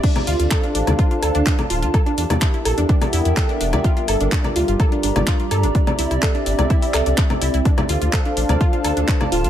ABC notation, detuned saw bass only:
X:1
M:4/4
L:1/16
Q:1/4=126
K:Dm
V:1 name="Detuned saw bass" clef=bass
z2 D,, D,, z2 A,,, D,, z2 D,, D,, z2 D,,, D,, | z2 E,, E,, z2 B,,, E,, z2 E,, E,, z2 E,,, E,, | z2 G,,, G,,, z2 D,, G,,, z2 G,,, G,,, z2 G,, G,,, | z2 C,, C,, z2 G,,, C,, z2 C,, C,, z2 C,, C,, |
z2 D,, D,, z2 A,,, D,, z2 D,, D,, z2 D,,, D,, |]